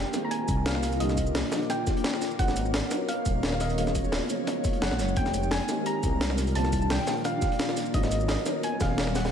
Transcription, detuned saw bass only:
0.48 0.99 C2 medium
1.01 1.34 C2 loud
1.35 1.43 C2 medium
2.39 2.73 G#1 loud
2.74 2.82 G#1 medium
3.26 3.77 D#1 medium
3.78 4.11 D#1 medium
4.13 4.21 D#1 medium
4.82 4.90 F#1 loud
4.91 5.01 A#1 medium
4.99 5.15 F#1 loud
5.17 5.50 F1 loud
5.51 5.60 F1 medium
6.03 6.54 C2 medium
6.56 6.89 C2 loud
6.90 6.98 C2 medium
7.94 8.28 G#1 loud
8.29 8.37 G#1 medium
8.81 9.32 D#1 medium

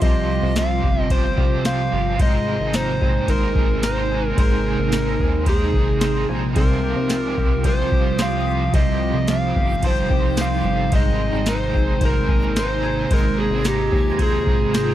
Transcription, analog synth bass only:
0.02 0.40 C2 loud
0.43 0.81 C2 loud
0.83 1.35 G1 medium
1.38 1.89 C2 medium
1.93 2.18 G1 medium
2.20 2.58 G#1 loud
2.60 2.99 G#1 loud
3.01 3.27 G#1 medium
3.28 4.33 G#1 loud
4.38 4.76 G#1 loud
4.79 5.18 G#1 loud
5.19 5.75 D#2 medium
5.74 6.26 G#1 loud
6.29 6.55 A#1 loud
6.56 6.95 C2 loud
6.96 7.35 C2 loud
7.38 7.64 C2 medium
7.64 8.70 C2 loud
8.73 9.13 C2 loud
9.14 9.53 C2 loud
9.56 10.08 G1 medium
10.10 10.62 C2 loud
10.64 10.90 G1 loud
10.92 11.31 G#1 loud
11.33 11.72 G#1 loud
11.74 12.00 G#1 medium
12.01 13.06 G#1 loud
13.11 13.49 G#1 loud
13.51 13.90 G#1 loud
13.92 14.48 D#2 medium
14.47 14.94 G#1 loud

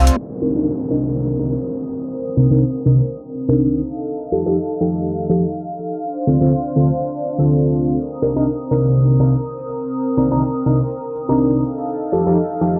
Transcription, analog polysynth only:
0.00 0.16 C4 medium
0.00 0.16 F4 medium
0.00 0.16 A4 loud
0.41 0.52 C3 medium
0.41 0.52 D4 medium
0.41 0.52 D#4 medium
0.41 0.52 A#4 medium
0.55 0.66 C3 medium
0.55 0.66 D4 medium
0.55 0.66 D#4 medium
0.55 0.66 A#4 medium
0.90 1.37 C3 medium
0.90 1.37 D4 medium
0.90 1.37 D#4 medium
0.90 1.37 A#4 medium
1.39 1.53 C3 medium
1.39 1.53 D4 medium
1.39 1.54 D#4 medium
1.39 1.54 A#4 medium
2.37 2.47 C3 medium
2.37 2.47 D4 medium
2.37 2.48 D#4 medium
2.37 2.48 A#4 medium
2.51 2.61 C3 medium
2.51 2.61 D4 medium
2.51 2.61 D#4 medium
2.51 2.61 A#4 loud
2.85 3.00 C3 medium
2.85 3.00 D4 medium
2.85 3.00 D#4 medium
2.85 3.00 A#4 medium
3.48 3.82 C3 medium
3.48 3.82 D4 medium
3.48 3.82 D#4 medium
3.48 3.82 A#4 medium
4.32 4.42 F3 medium
4.32 4.43 D#4 medium
4.32 4.43 G4 medium
4.32 4.43 A4 medium
4.46 4.56 F3 medium
4.46 4.56 D#4 medium
4.46 4.57 G4 medium
4.46 4.57 A4 medium
4.80 5.27 F3 medium
4.80 5.27 D#4 medium
4.80 5.27 G4 medium
4.80 5.27 A4 medium
5.29 5.44 F3 medium
5.29 5.44 D#4 medium
5.29 5.44 G4 medium
5.29 5.44 A4 medium
6.27 6.38 D3 medium
6.27 6.38 C4 medium
6.27 6.38 F4 medium
6.27 6.38 A4 medium
6.41 6.51 D3 medium
6.41 6.52 C4 medium
6.41 6.52 F4 medium
6.41 6.52 A4 loud
6.75 6.90 D3 medium
6.75 6.90 C4 medium
6.75 6.90 F4 medium
6.75 6.90 A4 medium
7.38 7.96 D3 medium
7.38 7.96 C4 medium
7.38 7.97 F4 medium
7.38 7.97 A4 medium
8.22 8.33 C3 medium
8.22 8.33 D4 medium
8.22 8.33 D#4 medium
8.22 8.33 A#4 medium
8.36 8.47 C3 medium
8.36 8.47 D4 medium
8.36 8.47 D#4 medium
8.36 8.47 A#4 medium
8.71 9.17 C3 medium
8.71 9.17 D4 medium
8.71 9.17 D#4 medium
8.71 9.17 A#4 medium
9.19 9.34 C3 medium
9.19 9.34 D4 medium
9.19 9.34 D#4 medium
9.19 9.34 A#4 medium
10.17 10.28 C3 medium
10.17 10.28 D4 medium
10.17 10.28 D#4 medium
10.17 10.28 A#4 medium
10.31 10.42 C3 medium
10.31 10.42 D4 medium
10.31 10.42 D#4 medium
10.31 10.42 A#4 loud
10.66 10.80 C3 medium
10.66 10.80 D4 medium
10.66 10.80 D#4 medium
10.66 10.80 A#4 medium
11.29 11.62 C3 medium
11.29 11.62 D4 medium
11.29 11.62 D#4 medium
11.29 11.62 A#4 medium
12.12 12.23 F3 medium
12.12 12.23 D#4 medium
12.12 12.23 G4 medium
12.12 12.23 A4 medium
12.26 12.37 F3 medium
12.26 12.37 D#4 medium
12.26 12.37 G4 medium
12.26 12.37 A4 medium
12.61 12.79 F3 medium
12.61 12.79 D#4 medium
12.61 12.79 G4 medium
12.61 12.79 A4 medium

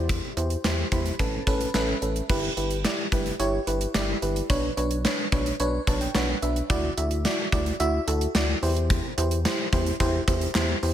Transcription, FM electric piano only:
0.00 0.26 E4 medium
0.00 0.26 G4 medium
0.00 0.26 C5 medium
0.37 0.58 E4 medium
0.37 0.58 G4 medium
0.37 0.58 C5 medium
0.64 0.85 E4 medium
0.64 0.85 G4 medium
0.64 0.85 C5 medium
0.92 1.13 E4 medium
0.92 1.13 G4 medium
0.92 1.13 C5 medium
0.92 1.18 B5 medium
1.19 1.40 C#4 medium
1.19 1.40 A4 medium
1.19 1.40 B4 medium
1.19 1.71 A5 medium
1.47 1.68 C#4 loud
1.47 1.68 A4 medium
1.47 1.68 B4 loud
1.74 1.95 C#4 loud
1.74 1.95 A4 loud
1.74 1.95 B4 loud
1.74 2.26 E5 medium
2.02 2.23 C#4 medium
2.02 2.23 A4 medium
2.02 2.23 B4 medium
2.29 2.50 E4 loud
2.29 2.50 G4 loud
2.29 2.50 B4 loud
2.57 2.78 E4 medium
2.57 2.78 G4 medium
2.57 2.78 B4 medium
2.85 3.06 E4 medium
2.85 3.06 G4 medium
2.85 3.06 D5 medium
3.12 3.33 E4 medium
3.12 3.33 G4 medium
3.12 3.33 B4 medium
3.40 3.61 E4 loud
3.40 3.61 G4 loud
3.40 3.61 C#5 loud
3.67 3.88 E4 medium
3.67 3.88 G4 medium
3.67 3.88 B4 medium
3.95 4.16 E4 medium
3.95 4.16 G4 medium
3.95 4.16 D5 medium
4.22 4.43 E4 medium
4.22 4.43 G4 medium
4.22 4.43 B4 medium
4.50 4.71 D4 loud
4.50 4.71 B4 loud
4.50 4.71 C#5 loud
4.77 4.98 D4 medium
4.77 4.98 B4 medium
4.77 4.98 C#5 medium
5.05 5.26 D4 medium
5.05 5.26 B4 medium
5.05 5.26 C#5 medium
5.32 5.53 D4 medium
5.32 5.53 B4 medium
5.32 5.53 C#5 loud
5.60 5.81 D4 loud
5.60 5.81 B4 loud
5.60 5.81 C#5 loud
5.87 6.08 D4 medium
5.87 6.08 B4 medium
5.87 6.08 C#5 medium
5.87 6.00 A5 medium
6.01 6.14 G5 medium
6.15 6.36 D4 medium
6.15 6.36 B4 medium
6.15 6.36 C#5 loud
6.15 6.40 F#5 medium
6.42 6.63 D4 medium
6.42 6.63 B4 medium
6.42 6.63 E5 medium
6.70 6.91 E4 loud
6.70 6.91 F#4 loud
6.70 6.91 D5 loud
6.97 7.18 E4 medium
6.97 7.18 F#4 medium
6.97 7.18 E5 medium
7.25 7.46 E4 medium
7.25 7.46 F#4 medium
7.25 7.46 D5 medium
7.53 7.73 E4 medium
7.53 7.73 F#4 medium
7.53 7.73 D5 loud
7.80 8.01 E4 loud
7.80 8.01 F#4 loud
7.80 8.01 E5 loud
8.07 8.28 E4 medium
8.07 8.28 F#4 medium
8.07 8.28 A4 medium
8.35 8.56 E4 medium
8.35 8.56 F#4 medium
8.35 8.56 D5 medium
8.63 9.07 E4 medium
8.63 9.07 G4 medium
8.63 9.07 C5 loud
9.18 9.39 E4 medium
9.18 9.39 G4 medium
9.18 9.39 C5 medium
9.45 9.66 E4 medium
9.45 9.66 G4 medium
9.45 9.66 C5 medium
9.73 9.94 E4 medium
9.73 9.94 G4 medium
9.73 9.94 C5 loud
10.00 10.21 E4 loud
10.00 10.21 G4 loud
10.00 10.21 C5 loud
10.28 10.49 E4 medium
10.28 10.49 G4 medium
10.28 10.49 C5 medium
10.55 10.76 E4 medium
10.55 10.76 G4 medium
10.55 10.76 C5 loud
10.83 10.94 E4 medium
10.83 10.94 G4 medium
10.83 10.94 C5 medium

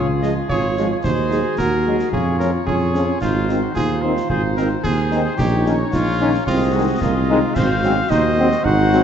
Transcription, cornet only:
0.22 0.34 D#5 medium
0.49 0.87 C#5 loud
0.91 0.97 C#5 medium
1.04 1.54 C5 loud
1.58 2.09 A#4 loud
2.12 2.38 G#4 loud
2.39 2.52 A#4 loud
2.67 3.17 G#4 loud
3.21 3.64 F4 loud
3.63 3.74 F#4 medium
3.75 4.04 G#4 loud
4.02 4.29 C5 loud
4.29 4.42 G#4 loud
4.56 4.69 A#4 loud
4.83 5.22 G#4 loud
5.25 5.37 G#4 loud
5.37 5.71 G4 loud
5.92 6.43 F4 loud
6.47 6.75 F4 loud
6.73 7.02 F#4 loud
7.01 7.57 F4 loud
7.55 8.11 F5 loud
8.10 8.66 D#5 loud
8.64 9.04 F#5 loud

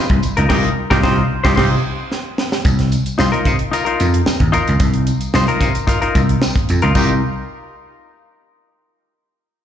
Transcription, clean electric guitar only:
0.37 0.50 D#4 medium
0.37 0.49 F4 medium
0.37 0.48 A#4 medium
0.49 0.69 D#4 loud
0.49 0.68 F4 loud
0.49 0.68 A#4 loud
0.90 1.02 D#4 loud
0.90 1.02 F4 loud
0.90 1.01 A#4 loud
1.03 1.23 D#4 loud
1.03 1.22 F4 loud
1.03 1.22 C5 loud
1.44 1.56 D#4 loud
1.44 1.56 F4 loud
1.44 1.55 C5 loud
1.56 1.76 D#4 loud
1.56 1.75 F4 medium
1.56 1.75 C5 loud
3.18 3.32 D#4 medium
3.18 3.31 F4 medium
3.18 3.32 C5 medium
3.32 3.52 D#4 medium
3.32 3.52 F4 medium
3.32 3.51 A#4 medium
3.71 3.86 D#4 medium
3.71 3.85 F4 medium
3.71 3.84 A#4 medium
3.85 4.06 D#4 medium
3.85 4.06 F4 medium
3.85 4.05 A#4 medium
4.52 4.73 D#4 medium
4.52 4.73 F4 loud
4.52 4.74 A#4 loud
5.34 5.48 D#4 medium
5.34 5.47 F4 medium
5.34 5.48 C5 medium
5.48 5.68 D#4 medium
5.48 5.67 F4 medium
5.48 5.67 A#4 medium
5.87 6.02 D#4 medium
5.87 6.01 F4 medium
5.87 6.00 A#4 medium
6.02 6.22 D#4 medium
6.02 6.21 F4 medium
6.02 6.21 A#4 medium
6.82 6.94 D#4 medium
6.82 6.95 F4 medium
6.82 6.95 A#4 medium
6.95 7.12 D#4 medium
6.95 7.13 F4 medium
6.95 7.13 A#4 loud

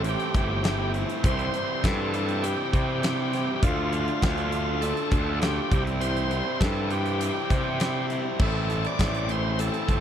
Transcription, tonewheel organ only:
0.09 0.35 G4 medium
0.37 0.92 G4 medium
1.25 1.86 C5 loud
1.84 2.46 A4 loud
2.43 2.71 G4 medium
2.72 3.01 G4 medium
3.02 3.55 G4 medium
3.56 3.63 G4 medium
3.63 4.86 F4 loud
4.81 5.11 A4 medium
5.12 5.40 A4 medium
5.42 5.84 G4 medium
6.00 6.62 C5 loud
6.60 6.91 A4 medium
6.91 8.06 G4 medium
8.42 8.87 A4 medium
8.87 9.32 D5 loud
9.31 9.61 C5 medium
9.59 10.00 A4 medium

